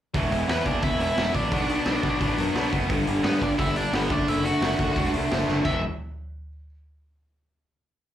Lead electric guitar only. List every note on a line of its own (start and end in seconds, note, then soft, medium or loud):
0.50 0.65 B3 medium
0.50 0.67 B4 medium
0.66 0.82 D4 medium
0.66 0.83 D5 medium
0.83 0.99 E4 medium
0.83 1.01 E5 loud
1.03 1.34 E4 medium
1.03 1.34 E5 loud
1.35 2.69 D4 medium
1.35 2.69 D5 medium
3.24 3.40 B3 medium
3.24 3.41 B4 medium
3.43 3.48 D4 medium
3.43 3.49 D5 medium
3.59 3.75 E4 medium
3.59 3.77 E5 medium
3.76 3.92 D4 medium
3.76 3.95 D5 medium
3.95 4.10 B3 medium
3.95 4.12 B4 medium
4.12 4.27 D4 medium
4.12 4.28 D5 medium
4.28 4.44 E4 medium
4.28 4.45 E5 medium
4.45 5.10 F#4 medium
4.45 5.10 F#5 medium
5.65 5.81 E5 medium